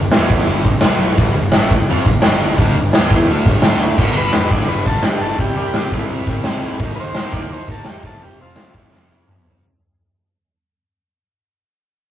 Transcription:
Already playing: G1 G2 D3
0.12 E2 E3, snare, open hi-hat
0.16 B3 E4
0.30 kick
0.38 snare
0.47 G1 G2 D3 G3, open hi-hat
0.65 G1 G2 D3, kick
0.81 B1 B2 F#3 B3, snare, open hi-hat
1.17 G1 G2 D3 G3, kick, open hi-hat
1.35 G1 G2 D3
1.52 A1 A2 E3 A3, snare, open hi-hat
1.71 muted picked electric bass stroke, muted distorted electric guitar stroke, kick
1.88 F2 F3 C4 F4, open hi-hat
2.06 G1 G2 D3, kick
2.22 G1 G2 D3 G3, snare, open hi-hat
2.58 D2 D3 A3 D4, kick, open hi-hat
2.76 G1 G2 D3
2.93 E2 E3 B3 E4, snare, open hi-hat
3.11 kick
3.28 D2 D3 A3 D4, open hi-hat
3.46 G1 G2 D3 G3, kick
3.62 D2 D3 A3 D4, snare, open hi-hat
3.96 G1 G2 D3, kick, crash
4.01 G3
4.12 G3 A#4
4.16 G1 D3 B4
4.33 F1 G2 D3, snare, open hi-hat
4.37 G3
4.49 G1 G2 D3 G3 D5, kick
4.60 snare
4.68 G1 G2 D3 B4, open hi-hat
4.72 G3
4.86 G2 D3 G3 A4, kick
5.03 G2 D3 G4, snare, open hi-hat
5.08 G3
5.21 G1 G3 A4
5.25 D3
5.38 C2 C3 G3 C4 G4, kick, open hi-hat
5.55 C2 C4 D4 G4
5.60 G3
5.74 A1 C3 G3, snare, open hi-hat
5.78 C4
5.92 C2 G3 C4, kick
5.96 C3
6.09 C2 C3 G3, open hi-hat
6.14 C4
6.27 C3 G3 C4, kick
6.44 C3 G3 C4, snare, open hi-hat
6.61 C2 G3 C4
6.79 D#2 D#3 A#3 D#4, kick, open hi-hat
6.95 D#2 D#4 B4
7.00 A#3 C5
7.14 C2 D#3, snare, open hi-hat
7.19 A#3 D#4
7.32 D#2 D#3 A#3 D#4 D5, kick
7.50 D#2 D#3 A#3 D#4 C5, open hi-hat
7.68 A#3 D#4 A4, kick
7.73 D#3
7.85 E2 D#3 A#3, snare, open hi-hat
7.89 D#4 G4
8.03 F1 C3 F3 A4, kick
8.09 F2
8.21 F1 F2 C3 G4, open hi-hat
8.26 F3
8.38 F1 F3 C4 F4
8.44 C3
8.56 D2 F2 C3, snare, open hi-hat
8.61 F3
8.74 F1 C3 F3, kick
8.78 F2
8.91 F1 F2 C3, snare
8.96 F3
9.10 F2 C3 F3
9.26 F2, mid tom
9.31 C3 F3
9.45 F1 F3, floor tom
9.49 C3

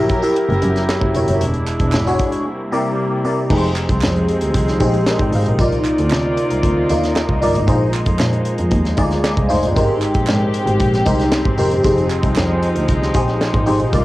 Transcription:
Already playing: F#3 E4 G4 A#4 C#5 E5
0.09 kick, closed hi-hat
0.22 E4 G4 A#4 E5, closed hi-hat
0.36 closed hi-hat
0.49 F#1, closed hi-hat
0.62 F#2, closed hi-hat
0.76 snare, closed hi-hat
0.89 snare, clap
1.01 F#1, kick
1.15 E1 E4 G4 A#4 C#5, closed hi-hat
1.27 F#1, closed hi-hat
1.41 E1 G#3 D4, closed hi-hat
1.54 closed hi-hat
1.67 clap, closed hi-hat
1.80 E1, kick, closed hi-hat
1.92 G#1, snare, clap
2.06 D4 F#4 G#4 C#5, closed hi-hat
2.19 kick, closed hi-hat
2.32 closed hi-hat
2.45 C3 G3 A#3
2.72 C3 E4 G4 A#4 D5
3.24 C3 E4 G4 A#4 D5
3.50 F1 F3 G#3 C4 D#4 G4 G#4 B4, kick, crash
3.57 C5
3.63 closed hi-hat
3.76 clap, closed hi-hat
3.89 C2, kick, closed hi-hat
4.01 F2, snare, clap
4.16 closed hi-hat
4.28 closed hi-hat
4.41 D2, closed hi-hat
4.54 C2, kick, closed hi-hat
4.68 snare, closed hi-hat
4.80 A#1 D#4 G4 G#4 C5, kick, closed hi-hat
4.94 closed hi-hat
5.06 A#4 D#5, snare, clap
5.19 G#1 D5 G5, kick, closed hi-hat
5.32 G#1 C5 F5, open hi-hat
5.46 A#1 A#4 D#5, closed hi-hat
5.58 C2 C3 A#3 D#4 F4 A#4 D5, kick, closed hi-hat
5.72 closed hi-hat
5.84 clap, closed hi-hat
5.98 D2, closed hi-hat
6.10 C3, snare, clap
6.37 closed hi-hat
6.50 C2, closed hi-hat
6.63 D2, kick, closed hi-hat
6.89 D#2 D#4 F4 A#4 D5, closed hi-hat
7.04 snare, closed hi-hat
7.16 snare, clap
7.29 C2, kick
7.42 G1 D#4 F4 A#4 D5, open hi-hat
7.55 G#1, closed hi-hat
7.67 A#1 G#3 D#4 F4 G#4 C5, kick, closed hi-hat
7.93 clap, closed hi-hat
8.06 F2, kick, closed hi-hat
8.19 A#2, snare, clap
8.33 closed hi-hat
8.45 closed hi-hat
8.58 F2, closed hi-hat
8.71 D#2, kick, closed hi-hat
8.85 snare, closed hi-hat
8.97 D2 D#4 F4 G#4 D5, kick, closed hi-hat
9.11 snare, closed hi-hat
9.24 snare, clap
9.37 C2, kick, closed hi-hat
9.49 F1 D#4 F4 G#4 C5, open hi-hat
9.63 G1, closed hi-hat
9.76 G#1 C4 D#4 G4 A#4 C5, kick, closed hi-hat
10.02 clap, closed hi-hat
10.14 A#1, kick, closed hi-hat
10.27 G#2, snare, clap
10.54 closed hi-hat
10.66 G#1, closed hi-hat
10.80 A#1, kick, closed hi-hat
10.94 snare, closed hi-hat
11.05 C2 D#4 G4 A#4 C5, kick, closed hi-hat
11.20 snare, closed hi-hat
11.32 snare, clap
11.45 G#1, kick
11.58 F1 D#4 G4 A#4 C5, open hi-hat
11.71 G1, closed hi-hat
11.83 F1 F3 G#3 D#4 G4 G#4 C5, kick, closed hi-hat
11.98 closed hi-hat
12.10 clap, closed hi-hat
12.23 C2, kick, closed hi-hat
12.36 F2, snare, clap
12.63 closed hi-hat
12.76 D2, closed hi-hat
12.88 C2, kick, closed hi-hat
13.02 snare
13.14 A#1 D#4 G4 G#4 C5, kick, closed hi-hat
13.28 snare, closed hi-hat
13.41 snare, clap
13.53 G#1, kick, closed hi-hat
13.66 G#1 D#4 G4 G#4 C5, open hi-hat
13.80 A#1, closed hi-hat
13.92 C2 C3 A#3 D#4 F4 A#4 D5, kick, closed hi-hat

